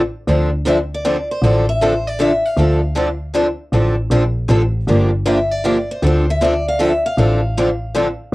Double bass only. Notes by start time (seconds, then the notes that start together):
0.27 D2
1.42 A1
2.57 D2
3.72 A1
4.10 A#1
4.49 A1
4.88 G1
6.02 D2
7.17 A1